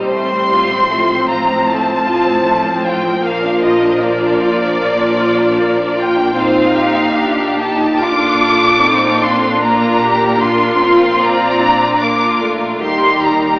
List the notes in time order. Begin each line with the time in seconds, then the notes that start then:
Already playing: G3 C4 D#4 C5
0.10 A1 A2 A3 C6
0.33 C4
0.52 F4
0.71 C4
0.90 F3 A3
1.11 C4
1.29 F4 A#5
1.50 C4
1.69 A3 A5
1.88 C4
2.08 F4
2.27 C4
2.48 A3
2.66 C4
2.85 F4 G5
3.04 C4
3.23 A#1 A#2 A#3 F4 A#4 F5
3.44 D4
3.63 F4 D#5
3.83 D4
4.02 A#3 D5
4.22 D4
4.42 F4
4.61 D4
4.81 A#3
4.99 D4
5.20 F4
5.39 D4
5.59 A#3
5.79 D4
5.98 F4 G5
6.18 D4
6.38 A#1 A#2 C4 D#4 F4 C5 F5
6.77 G4
7.18 D4 G4
7.60 D#4 A5
8.01 D4 F4 A4 D6
8.43 F4
8.82 C4 D#4 F4
9.23 D4 C6
9.62 A#3 F4 A#4 A#5
10.03 G4
10.42 D4 F4 C6
10.82 C4
11.21 F4 D5 A#5
11.62 D4
12.02 A#3 F4 A#4 D6
12.42 A3
12.82 D#2 G3 D#4 G4 A#4 C6
13.23 A#5